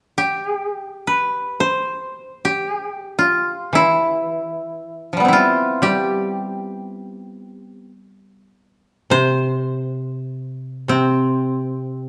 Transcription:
0.18 G4
1.07 B4
1.60 C5
2.45 G4
3.19 F4
3.73 E3 E4
5.13 F3 G3
5.20 B3
5.25 C4 E4
5.33 F4
5.82 G3 G4
9.10 C3 C5
10.88 C3 C4

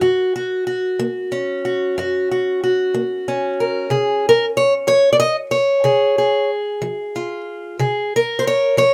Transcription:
Already playing: A#4
0.01 F#2 F#4
0.36 F#4
0.67 F#4
0.99 A#3
1.32 C#4
1.65 F#4
1.98 F#2 F#4
2.31 F#4
2.64 F#4
2.94 A#3
3.28 C#4
3.60 A#4
3.90 C#3 G#4
4.29 A#4
4.57 C#5
4.87 F3 C#5
5.13 D5
5.20 D#5
5.51 C#5
5.84 C#3 G#4
6.18 G#4
6.82 F3
7.16 F4
7.79 C#3 G#4
8.16 A#4
8.39 C5
8.47 C#5
8.77 F3 C#5

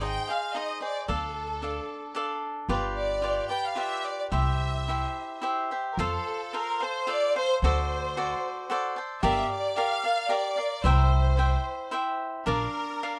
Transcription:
Already playing: G#1
0.01 D#4 G#4 C5 D#5 G5
0.28 G#4 C5 D#5 F5
0.54 D#4 G#4 C5 D#5
0.81 G#4 C5 D5 D#5
1.08 D2 D4 A4 D5 F5
1.62 D4 A4 D5 F5
2.15 D4 A4 D5 F5
2.69 G1 F4 G4 B4 D5
2.98 D5
3.22 F4 G4 B4 D5
3.49 G4 B4 D5 G5
3.66 F5
3.75 F4 G4 B4 D5 E5
4.07 D5
4.20 D5
4.32 C2 E4 G4 C5 E5
4.88 E4 G4 C5 E5
5.42 E4 G4 C5 E5
5.71 G4 C5 E5
5.92 A#4
5.97 F2 F4 A4 C5 F5
6.53 F4 A4 A#4 C5 F5
6.80 A4 C5 F5
7.07 F4 A4 C5 D5 F5
7.36 A4 C5 F5
7.62 D2 F#4 A4 C5 D5
8.17 F#4 A4 C5 D5
8.70 F#4 A4 C5 D5
8.96 A4 C5 D5
9.23 G1 G4 A#4 D5 E5 F5
9.54 D5
9.76 G4 A#4 D5 F5
10.04 A#4 D5 F5
10.29 G4 A#4 D5 F5
10.56 A#4 D5 F5
10.84 C2 E4 C5 E5 G5
10.88 A#4
10.98 C5
11.37 E4 C5 E5 G5
11.91 E4 C5 E5 G5
12.46 A#1 D4 A#4 D5 F5
13.03 D4 A#4 D5 F5

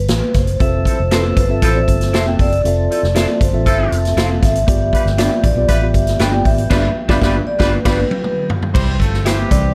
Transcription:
Already playing: B4
0.08 A1, snare, closed hi-hat
0.34 F#1 C5, kick, snare, closed hi-hat
0.47 closed hi-hat
0.60 F1 F3 C4 F4 A4 E5, kick, closed hi-hat
0.85 F3 E4 A4, kick, closed hi-hat
1.00 F1
1.11 C4 E4 F4 A4 B4 C5, snare, closed hi-hat
1.37 G1 B4, kick, closed hi-hat
1.49 C4 F4 A4 E5
1.62 A1 F3 E4 A4 C5, kick, closed hi-hat
1.75 C4 F4 A4 D5
1.83 E5
1.88 G1, kick, closed hi-hat
2.01 snare, closed hi-hat
2.13 F1 E4 A4 C5 E5, snare, closed hi-hat
2.26 C4 F4 A4 G5
2.39 F#1 D5, kick, open hi-hat
2.52 closed hi-hat
2.64 F1 C4 F4 A4 E5, closed hi-hat
2.91 F3 E4 A4, closed hi-hat
3.03 F1, snare
3.15 C4 E4 F4 A4 C5 E5, snare, closed hi-hat
3.41 G1 C5, kick, closed hi-hat
3.52 A1 C4 F4 A4 E5
3.66 G1 F3 E4 A4 E5, kick, closed hi-hat
3.78 C4 F4 A4 E5
3.92 F1, closed hi-hat
4.05 snare, closed hi-hat
4.17 F1 E4 A4 C5 F5, snare, closed hi-hat
4.29 C4 F4 A4 E5
4.43 G#1 E5, kick, snare, closed hi-hat
4.55 closed hi-hat
4.67 G1 G2 F3 B3 F4 G4 D5, kick, closed hi-hat
4.93 G3 F4 B4, kick, closed hi-hat
5.06 G1, snare
5.17 B3 D4 F4 G4 B4 D5, snare, closed hi-hat
5.44 A1 D5, kick, closed hi-hat
5.55 B1 B3 F4 G4 D5
5.68 A1 G3 F4 B4 E5, kick, closed hi-hat
5.82 B3 F4 G4 D5
5.94 G1, kick, closed hi-hat
6.07 snare, closed hi-hat
6.19 G1 D4 F4 B4 G5, snare, closed hi-hat
6.32 B3 F4 G4 D5
6.45 G#1 E5, kick, open hi-hat
6.58 closed hi-hat
6.70 G1 G2 G3 B3 D4 F4 G4 B4 D5, kick, snare, crash
7.08 G1 G3 B3 D4 F4 G4 B4 D5, kick, snare
7.21 G1 G3 B3 D4 F4 G4 B4 D5, kick, snare
7.47 D5
7.59 G1 G3 B3 D4 F4 G4 B4 D5, kick, snare
7.72 B4
7.85 G1 G3 B3 D4 F4 G4 B4 D5, kick, snare, crash
8.11 high tom
8.24 mid tom
8.50 floor tom
8.62 floor tom
8.74 C2 E3 G3 C4 E4 G4 C5, kick, crash
9.00 G1 A3 F4 A4, kick, closed hi-hat
9.13 snare
9.25 E3 C4 E4 G4 C5 E5, snare, closed hi-hat
9.51 C2 E3 G3 C4 D5, kick, closed hi-hat

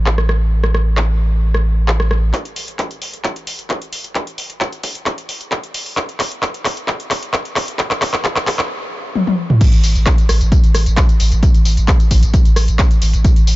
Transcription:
Already playing: A1
0.06 clap
0.18 cross-stick
0.29 cross-stick
0.64 cross-stick
0.74 cross-stick
0.97 clap
1.54 cross-stick
1.88 clap
2.00 cross-stick
2.11 cross-stick
2.33 kick, clap, closed hi-hat
2.45 closed hi-hat
2.56 open hi-hat
2.68 closed hi-hat
2.79 kick, clap, closed hi-hat
2.91 closed hi-hat
3.02 open hi-hat
3.13 closed hi-hat
3.24 kick, clap, closed hi-hat
3.36 closed hi-hat
3.47 open hi-hat
3.59 closed hi-hat
3.70 kick, clap, closed hi-hat
3.82 closed hi-hat
3.93 open hi-hat
4.04 closed hi-hat
4.15 kick, clap, closed hi-hat
4.27 closed hi-hat
4.38 open hi-hat
4.50 closed hi-hat
4.61 kick, clap, closed hi-hat
4.73 closed hi-hat
4.83 kick, open hi-hat
4.95 closed hi-hat
5.06 kick, clap, closed hi-hat
5.18 closed hi-hat
5.29 open hi-hat
5.41 closed hi-hat
5.52 kick, clap, closed hi-hat
5.63 closed hi-hat
5.74 open hi-hat
5.86 open hi-hat
5.97 kick, clap, closed hi-hat
6.09 closed hi-hat
6.20 clap, open hi-hat
6.32 closed hi-hat
6.43 kick, clap, closed hi-hat
6.54 closed hi-hat
6.65 clap, open hi-hat
6.77 closed hi-hat
6.88 kick, clap, closed hi-hat
7.00 closed hi-hat
7.11 clap, open hi-hat
7.23 closed hi-hat
7.33 kick, clap, closed hi-hat
7.45 closed hi-hat
7.56 clap, open hi-hat
7.68 closed hi-hat
7.79 kick, clap, closed hi-hat
7.91 clap, closed hi-hat
8.02 clap, open hi-hat
8.14 clap, closed hi-hat
8.24 kick, clap, closed hi-hat
8.36 clap, closed hi-hat
8.47 kick, clap, open hi-hat
8.59 clap, closed hi-hat
9.15 high tom
9.27 high tom
9.50 mid tom
9.61 kick, closed hi-hat, tambourine, crash
9.73 A1, closed hi-hat, tambourine
9.84 A1, open hi-hat, tambourine
9.95 A1, closed hi-hat, tambourine
10.06 kick, clap, closed hi-hat, tambourine
10.18 closed hi-hat, tambourine
10.29 A1, cross-stick, open hi-hat, tambourine
10.41 A1, closed hi-hat, tambourine
10.52 kick, closed hi-hat, tambourine
10.64 A1, closed hi-hat, tambourine
10.75 A1, cross-stick, open hi-hat, tambourine
10.86 A1, closed hi-hat, tambourine
10.97 kick, clap, closed hi-hat, tambourine
11.09 closed hi-hat, tambourine
11.20 A1, open hi-hat, tambourine
11.32 A1, closed hi-hat, tambourine
11.43 kick, closed hi-hat, tambourine
11.54 A1, closed hi-hat, tambourine
11.65 A1, open hi-hat, tambourine
11.77 A1, closed hi-hat, tambourine
11.88 kick, clap, closed hi-hat, tambourine
12.00 closed hi-hat, tambourine
12.11 A1, kick, open hi-hat, tambourine
12.23 A1, closed hi-hat, tambourine
12.34 kick, closed hi-hat, tambourine
12.45 A1, closed hi-hat, tambourine
12.56 A1, cross-stick, open hi-hat, tambourine
12.68 A1, closed hi-hat, tambourine
12.79 kick, clap, closed hi-hat, tambourine
12.91 closed hi-hat, tambourine
13.02 A1, open hi-hat, tambourine
13.13 A1, closed hi-hat, tambourine
13.24 kick, closed hi-hat, tambourine
13.36 A1, closed hi-hat, tambourine
13.47 A1, open hi-hat, tambourine

